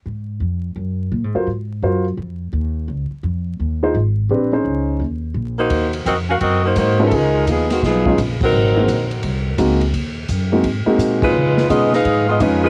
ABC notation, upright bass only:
X:1
M:4/4
L:1/8
Q:"Swing" 1/4=170
K:Abmix
V:1 name="Upright bass" clef=bass
A,,2 F,,2 G,,2 (3B,, A,, G,, | A,,2 G,,2 F,,2 E,,2 | D,, z F,,2 E,,2 A,,,2 | B,,,2 D,,2 E,,2 B,,,2 |
E,,2 F,,2 G,,2 A,,2 | D,,2 E,,2 _C,,2 B,,,2 | A,,,2 B,,,2 C,,2 D,,2 | E,,2 G,,2 A,, z B,,2 |
D,2 _C,2 A,,2 F,,2 |]